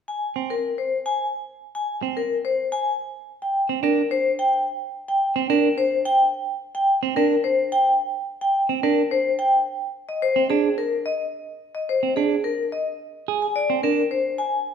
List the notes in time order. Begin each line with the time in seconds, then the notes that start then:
0.08 G#5
0.36 C4
0.50 A#4
0.78 C5
1.06 G#5
1.75 G#5
2.02 C4
2.17 A#4
2.45 C5
2.72 G#5
3.42 G5
3.69 C4
3.83 D4 A#4
4.11 C5
4.39 G5
5.08 G5
5.36 C4
5.50 D4 A#4
5.78 C5
6.05 G5
6.75 G5
7.03 C4
7.16 D4 A#4
7.44 C5
7.72 G5
8.41 G5
8.69 C4
8.83 D4 A#4
9.11 C5
9.39 G5
10.09 D#5
10.22 C5
10.36 C4
10.50 D4 G#4
10.78 A#4
11.06 D#5
11.75 D#5
11.89 C5
12.03 C4
12.16 D4 G#4
12.44 A#4
12.72 D#5
13.28 G#4
13.42 G#5
13.56 D5
13.70 C4
13.83 D4 A#4
14.11 C5
14.38 G#5